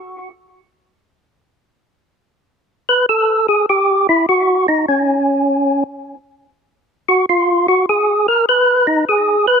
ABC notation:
X:1
M:4/4
L:1/8
Q:"Swing" 1/4=100
K:C#dor
V:1 name="Tonewheel organ"
z8 | z B =A G =G E F D | C3 z4 F | ^E F G A B D G B |]